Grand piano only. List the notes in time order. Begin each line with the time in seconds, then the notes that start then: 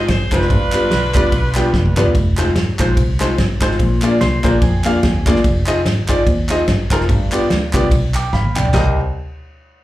0.32 G#3 C4 D#4 F4 C5
0.51 G2
0.73 G3 B3 D4 F4 B4
1.15 G3 B3 D4 F4 D5
1.56 G3 B3 D4 F4 G4
1.97 G3 B3 D4 F4 B4
2.38 G#3 C4 D#4 F4 C5
2.80 G#3 C4 D#4 F4 C5
3.21 G#3 C4 D#4 F4 C5
3.62 G#3 C4 D#4 F4 C5
3.80 A#2
4.03 A#3 D4 F4 G#4 D5
4.43 A#3 D4 F4 G#4 C5
4.85 A#3 D4 F4 G#4 F5
5.26 A#3 D4 F4 G#4 D5
5.67 C4 D#4 F4 G#4 D#5
6.08 C4 D#4 F4 G#4 D5
6.50 C4 D#4 F4 G#4 D#5
6.91 C4 D#4 F4 G#4 A#4
7.09 G2
7.32 B3 D4 F4 G4 D5
7.74 B3 D4 F4 G4 D5
8.15 G5 D6
8.33 F5 B5
8.56 D5 G5
8.74 C2 C4 G4 A#4 D#5